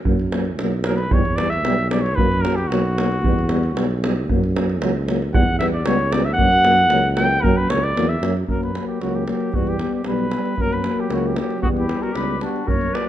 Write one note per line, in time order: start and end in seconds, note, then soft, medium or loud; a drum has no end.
0.05 0.60 F#2 medium
0.05 0.18 F#3 medium
0.05 0.17 A#3 medium
0.05 davul low medium
0.20 davul high soft
0.32 0.44 F#3 medium
0.32 0.44 A#3 medium
0.32 davul high medium
0.45 davul high soft
0.59 1.14 B1 medium
0.59 0.72 F#3 medium
0.59 0.71 A#3 medium
0.59 davul high medium
0.72 davul high soft
0.84 0.98 F#3 medium
0.84 0.98 A#3 medium
0.84 0.98 A#4 medium
0.84 davul high medium
0.96 1.15 B4 medium
0.96 davul high soft
1.11 1.67 E2 medium
1.11 1.23 G3 medium
1.11 1.24 B3 medium
1.11 1.37 C#5 medium
1.11 davul low loud
1.25 davul high soft
1.36 1.50 G3 medium
1.36 1.49 B3 medium
1.36 1.51 D5 medium
1.36 davul high medium
1.50 1.90 E5 loud
1.50 davul high soft
1.65 2.20 B1 medium
1.65 1.77 G3 medium
1.65 1.76 B3 medium
1.65 davul high medium
1.79 davul high soft
1.90 2.02 G3 medium
1.90 2.01 B3 medium
1.90 2.03 D5 medium
1.90 davul high medium
2.01 2.17 C#5 medium
2.06 davul high soft
2.15 2.72 F#2 medium
2.15 2.28 F#3 medium
2.15 2.28 A#3 medium
2.15 2.43 B4 loud
2.15 davul low medium
2.32 davul high soft
2.41 2.55 F#3 medium
2.41 2.55 A#3 medium
2.41 2.57 A#4 loud
2.41 davul high medium
2.55 2.69 G4 medium
2.55 davul high soft
2.67 3.26 B1 loud
2.67 4.01 F#4 medium
2.71 2.82 F#3 medium
2.71 2.82 A#3 medium
2.71 davul high medium
2.86 davul high soft
2.98 3.08 F#3 medium
2.98 3.09 A#3 medium
2.98 davul high medium
3.12 davul high soft
3.24 3.79 E2 medium
3.24 3.36 G3 medium
3.24 3.35 B3 medium
3.24 davul low medium
3.39 davul high soft
3.49 3.61 G3 medium
3.49 3.62 B3 medium
3.49 davul high medium
3.63 davul high soft
3.77 4.31 B1 medium
3.77 3.87 G3 medium
3.77 3.87 B3 medium
3.77 davul high medium
3.91 davul high soft
4.03 4.15 G3 medium
4.03 4.13 B3 soft
4.03 davul high medium
4.16 davul high soft
4.29 4.84 F#2 medium
4.29 4.41 F#3 medium
4.29 4.41 A#3 medium
4.29 davul low medium
4.44 davul high soft
4.56 4.67 F#3 medium
4.56 4.66 A#3 medium
4.56 davul high medium
4.69 davul high soft
4.82 5.35 C#2 medium
4.82 4.93 F#3 medium
4.82 4.93 A#3 medium
4.82 davul high medium
5.08 5.19 F#3 medium
5.08 5.20 A#3 medium
5.08 davul high medium
5.22 davul high soft
5.33 5.88 E2 medium
5.33 5.44 G3 medium
5.33 5.44 B3 medium
5.33 5.58 F#5 medium
5.33 davul low loud
5.59 5.72 G3 medium
5.59 5.71 B3 medium
5.59 5.65 E5 medium
5.59 davul high medium
5.73 5.88 D5 medium
5.73 davul high soft
5.86 6.40 C#2 loud
5.86 5.97 G3 medium
5.86 5.97 B3 medium
5.86 6.13 C#5 medium
5.86 davul high medium
5.99 davul high soft
6.12 6.24 G3 medium
6.12 6.23 B3 medium
6.12 6.26 D5 medium
6.12 davul high medium
6.25 6.33 E5 medium
6.25 davul high soft
6.33 6.48 A#3 medium
6.33 7.11 F#5 loud
6.38 6.93 F#2 loud
6.38 6.51 F#3 medium
6.38 davul low medium
6.52 davul high soft
6.65 6.76 F#3 medium
6.65 6.75 A#3 medium
6.65 davul high medium
6.78 davul high soft
6.90 7.45 C#2 loud
6.90 7.02 F#3 medium
6.90 7.01 A#3 medium
6.90 davul high medium
7.04 davul high soft
7.16 7.28 F#3 medium
7.16 7.28 A#3 medium
7.16 7.44 G5 loud
7.16 davul high medium
7.31 davul high soft
7.42 7.70 F#2 medium
7.42 7.56 F#3 medium
7.42 7.54 A#3 medium
7.42 7.58 A#4 loud
7.42 davul low medium
7.57 7.71 B4 medium
7.69 7.94 C#2 loud
7.69 7.82 F#3 medium
7.69 7.80 A#3 medium
7.69 7.85 C#5 medium
7.69 davul high medium
7.84 8.10 D5 medium
7.84 davul high soft
7.96 8.20 E2 medium
7.96 8.07 F#3 medium
7.96 8.07 A#3 medium
7.96 davul high medium
8.09 8.35 E5 medium
8.09 davul high soft
8.21 8.45 F#2 loud
8.21 8.32 A#3 medium
8.21 davul high medium
8.25 8.35 F#3 medium
8.37 davul high soft
8.48 8.77 F#2 medium
8.48 8.74 F#3 soft
8.48 8.73 A#3 medium
8.48 8.61 A#4 medium
8.48 davul low medium
8.63 8.87 B4 medium
8.63 davul high soft
8.74 9.00 F#3 soft
8.74 9.00 A#3 soft
8.74 davul high medium
8.87 9.03 G4 medium
9.01 9.30 C#2 medium
9.01 9.27 F#3 medium
9.01 9.27 A#3 medium
9.01 9.17 F#4 medium
9.01 davul high soft
9.15 9.28 G4 medium
9.15 davul high soft
9.27 9.53 F#3 medium
9.27 9.53 A#3 soft
9.27 9.56 G4 medium
9.27 davul high medium
9.40 davul high soft
9.54 9.82 E2 medium
9.54 9.80 G3 medium
9.54 9.79 B3 medium
9.54 9.70 F#4 medium
9.54 davul low medium
9.67 9.94 G4 medium
9.67 davul high soft
9.79 10.05 G3 soft
9.79 10.04 B3 medium
9.79 davul high medium
9.94 10.08 G4 medium
10.04 10.35 B1 medium
10.04 10.31 G3 medium
10.04 10.30 B3 medium
10.04 10.63 B4 medium
10.04 davul high medium
10.19 davul high soft
10.30 10.57 B3 soft
10.30 davul high medium
10.35 10.58 G3 medium
10.46 davul high soft
10.57 10.88 F#2 medium
10.57 10.84 F#3 medium
10.57 10.83 A#3 medium
10.57 10.74 A#4 loud
10.57 davul low medium
10.73 11.01 B4 medium
10.73 davul high soft
10.83 11.11 F#3 medium
10.83 11.09 A#3 medium
10.83 davul high medium
11.00 11.15 G4 medium
11.10 11.39 C#2 medium
11.10 11.37 F#3 medium
11.10 11.34 A#3 medium
11.10 11.29 F#4 medium
11.10 davul high medium
11.24 11.38 G4 medium
11.24 davul high soft
11.35 11.59 A#3 medium
11.35 11.62 G4 medium
11.35 davul high medium
11.39 11.63 F#3 medium
11.50 davul high soft
11.60 11.91 E2 medium
11.60 11.86 B3 medium
11.60 11.69 B3 medium
11.60 11.68 F#4 medium
11.60 davul low medium
11.65 11.89 G3 medium
11.77 12.04 E4 medium
11.77 12.04 G4 medium
11.77 davul high soft
11.88 12.15 G3 soft
11.88 12.14 B3 medium
11.88 davul high medium
12.02 12.14 F#4 medium
12.02 12.18 A#4 medium
12.02 davul high soft
12.13 12.43 C#2 medium
12.13 12.40 G3 medium
12.13 12.38 B3 medium
12.13 12.40 G4 medium
12.13 12.41 B4 medium
12.13 davul high medium
12.39 12.66 G3 medium
12.39 12.65 B3 soft
12.39 12.69 D4 medium
12.39 davul high medium
12.45 12.70 F#4 medium
12.56 davul high soft
12.66 12.95 F#2 medium
12.66 12.92 F#3 soft
12.66 12.90 A#3 medium
12.66 12.94 A#4 medium
12.66 12.96 C#5 loud
12.66 davul low medium
12.81 davul high soft
12.91 13.09 F#3 medium
12.91 13.09 A#3 medium
12.91 13.06 B4 medium
12.91 13.07 D5 medium
12.95 davul high medium